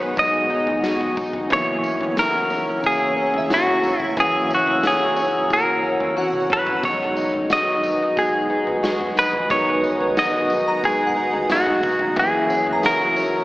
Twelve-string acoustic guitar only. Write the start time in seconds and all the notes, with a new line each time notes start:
Already playing: D#3 G#3 D#4 F#4
0.17 G#3
0.50 D#4
0.84 F#4
1.17 D#4
1.50 E3
1.83 C#4
2.17 F#4
2.50 C#4
2.84 A#3
3.17 C#4
3.50 F#4
3.83 C#4
4.17 E3
4.50 C#4
4.83 F#4
5.17 C#4
5.83 C#4
6.17 F#4
6.50 C#4
6.83 D#3
7.17 D#4
7.50 F#4
7.83 D#4
8.17 G#3
8.50 D#4
8.83 F#4
9.17 D#4
9.50 D#3
9.83 D#4
10.17 F#4
10.50 D#4
10.83 G#3
11.17 D#4
11.50 F#4
11.83 D#4
12.17 E3
12.50 C#4
12.83 F#4
13.17 C#4